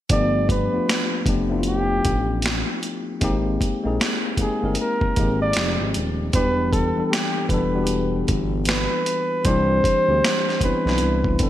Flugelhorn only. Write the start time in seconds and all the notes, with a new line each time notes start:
0.11 D5
0.51 B4
1.68 G4
4.41 G#4
4.80 A#4
5.42 D5
6.35 B4
6.73 A4
7.07 G4 A4
7.49 B4
8.68 B4
9.46 C5
10.64 B4